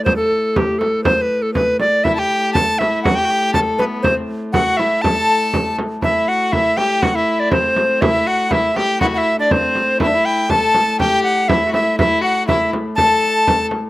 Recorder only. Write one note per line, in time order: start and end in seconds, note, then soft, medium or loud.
0.04 0.15 C5 medium
0.16 0.53 A4 medium
0.53 0.58 A4 medium
0.57 0.80 G4 medium
0.79 1.03 A4 medium
1.04 1.17 C5 medium
1.17 1.23 C5 medium
1.22 1.44 B4 medium
1.42 1.53 A4 medium
1.54 1.77 B4 medium
1.80 2.05 D5 medium
2.04 2.15 E5 medium
2.15 2.51 G5 medium
2.15 2.20 A5 medium
2.53 2.80 A5 loud
2.79 3.02 E5 medium
3.03 3.17 F#5 medium
3.15 3.53 G5 loud
3.54 3.60 A5 medium
3.78 3.84 B4 medium
4.03 4.14 C5 medium
4.53 4.79 F#5 medium
4.77 5.03 E5 medium
5.02 5.77 A5 loud
6.03 6.30 E5 medium
6.28 6.54 F#5 medium
6.52 6.79 E5 medium
6.77 7.04 G5 medium
7.02 7.17 F#5 medium
7.16 7.41 E5 medium
7.40 7.52 D5 medium
7.52 8.03 C5 medium
8.01 8.29 E5 medium
8.27 8.54 F#5 medium
8.52 8.78 E5 medium
8.76 9.01 G5 medium
9.01 9.06 F#5 medium
9.14 9.19 F#5 medium
9.18 9.36 E5 medium
9.39 9.53 D5 medium
9.52 10.00 C5 medium
10.01 10.27 E5 loud
10.25 10.52 G5 medium
10.50 10.99 A5 medium
11.00 11.22 G5 medium
11.24 11.50 F#5 medium
11.48 11.73 E5 medium
11.73 11.96 E5 medium
11.98 12.21 E5 medium
12.23 12.46 F#5 medium
12.48 12.70 E5 medium
12.95 13.66 A5 loud